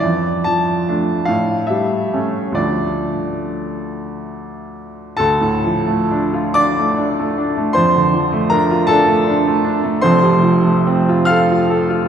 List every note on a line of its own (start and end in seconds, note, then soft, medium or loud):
0.00 1.26 F2 soft
0.00 0.45 D5 medium
0.44 1.13 F3 soft
0.44 1.28 A5 medium
0.88 1.25 A3 soft
0.88 1.25 D4 soft
1.25 2.53 A2 soft
1.25 1.69 F5 medium
1.67 2.39 G3 soft
1.67 2.55 E5 medium
2.13 2.53 A3 soft
2.13 2.53 C#4 soft
2.52 5.14 D2 soft
2.52 5.15 F3 soft
2.52 5.16 A3 soft
2.52 4.77 D5 medium
2.57 5.16 D4 soft
5.17 7.71 D2 soft
5.17 6.51 A4 medium
5.17 6.55 A5 medium
5.41 5.78 A2 soft
5.64 6.02 F3 soft
5.87 6.25 A3 soft
6.11 6.48 D4 soft
6.33 6.69 F4 soft
6.54 6.91 D4 soft
6.54 7.71 D5 medium
6.54 7.75 D6 medium
6.79 7.11 A3 soft
6.98 7.29 D4 soft
7.19 7.50 A3 soft
7.38 7.69 D4 soft
7.57 7.76 A3 soft
7.73 10.01 F2 medium
7.73 8.47 C5 medium
7.73 8.50 C6 medium
7.95 8.26 D3 soft
8.14 8.44 F3 soft
8.32 8.63 A3 soft
8.50 8.82 D4 soft
8.50 8.86 A#4 medium
8.50 8.89 A#5 medium
8.71 9.01 F4 soft
8.87 9.21 D4 medium
8.87 10.00 A4 medium
8.87 10.03 A5 medium
9.08 9.39 A3 soft
9.27 9.58 D4 soft
9.47 9.78 A3 soft
9.64 9.96 D4 soft
9.84 10.04 A3 soft
10.02 12.08 F1 medium
10.02 12.08 F2 medium
10.02 11.26 C5 medium
10.02 11.29 C6 medium
10.23 10.57 C3 soft
10.43 10.78 F3 soft
10.64 11.00 A3 soft
10.87 11.22 C4 soft
11.09 11.43 F4 soft
11.25 11.62 A4 medium
11.25 12.08 F5 medium
11.25 12.08 F6 medium
11.51 11.82 F4 soft
11.70 12.00 A4 medium
11.90 12.08 F4 soft